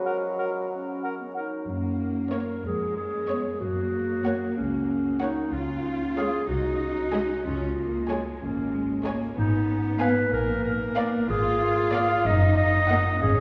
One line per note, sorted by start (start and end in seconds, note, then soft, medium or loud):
0.00 1.32 F#3 medium
0.00 0.54 F#4 soft
0.05 0.17 A#4 soft
0.05 0.12 F#5 soft
0.38 0.50 A#4 soft
0.38 0.44 F#5 soft
0.70 1.16 C#4 soft
1.03 1.15 A#4 soft
1.03 1.09 F#5 soft
1.21 1.28 B3 soft
1.34 1.71 D#4 soft
1.34 1.48 A#4 soft
1.34 1.40 F#5 soft
1.67 2.46 F#2 soft
1.67 2.61 A#3 soft
1.67 2.35 C#4 soft
2.32 2.57 A#3 soft
2.32 2.65 A#4 medium
2.32 2.56 C#5 soft
2.32 2.57 C#5 soft
2.65 3.43 F2 soft
2.65 3.61 G#3 soft
2.65 2.96 G#4 medium
2.97 3.60 G#4 medium
3.28 3.53 B3 soft
3.28 3.52 C#5 soft
3.28 3.53 C#5 soft
3.60 4.39 F#2 medium
3.60 5.50 A#3 soft
3.60 4.56 F#4 medium
4.25 4.50 A#3 soft
4.25 4.50 C#5 soft
4.25 4.49 F#5 soft
4.57 5.36 C#2 medium
4.57 5.22 C#4 medium
5.21 5.46 A#3 soft
5.21 5.55 D#4 medium
5.21 5.46 C#5 soft
5.21 5.46 F#5 soft
5.53 6.31 C#2 medium
5.53 6.16 C#4 soft
5.53 6.48 F4 soft
6.17 6.42 G#3 soft
6.17 6.48 G#4 medium
6.17 6.42 C#5 soft
6.17 6.42 F5 soft
6.48 7.27 C2 medium
6.48 7.43 D#4 soft
6.48 6.80 F#4 medium
6.81 7.47 F#4 medium
7.13 7.38 G#3 soft
7.13 7.38 D#5 soft
7.13 7.37 G#5 soft
7.45 8.23 C#2 medium
7.45 7.77 C#4 soft
7.45 8.14 F4 medium
7.77 8.09 A#3 soft
8.09 8.41 G#3 soft
8.09 8.34 G#3 soft
8.09 8.33 C#5 soft
8.09 8.34 G#5 soft
8.41 9.19 G#1 medium
8.41 8.74 A#3 soft
8.41 9.01 C#4 medium
8.73 9.05 G#3 soft
9.05 9.30 G#3 medium
9.05 9.37 A#3 soft
9.05 9.29 C#5 medium
9.05 9.30 G#5 medium
9.37 10.15 G#1 medium
9.37 10.32 B3 medium
9.37 9.97 D#4 medium
10.00 10.25 B3 medium
10.00 10.33 B4 medium
10.00 10.25 F5 medium
10.00 10.25 G#5 medium
10.33 11.11 A#1 medium
10.33 11.28 A#3 medium
10.33 10.64 A#4 medium
10.65 11.28 A#4 medium
10.97 11.21 A#3 medium
10.97 11.21 D5 medium
10.97 11.21 F5 medium
11.29 12.08 G#1 medium
11.29 12.24 F4 medium
11.29 11.93 G#4 medium
11.94 12.18 A#3 medium
11.94 12.18 D5 medium
11.94 12.18 F5 medium
11.94 12.28 F5 medium
12.25 13.04 F#1 medium
12.25 13.23 D#4 medium
12.25 12.57 D#5 medium
12.57 13.21 D#5 medium
12.89 13.15 A#3 medium
12.89 13.14 D#5 medium
12.89 13.14 F#5 medium
13.21 13.40 G#1 medium
13.21 13.40 C#4 medium
13.21 13.40 G#4 medium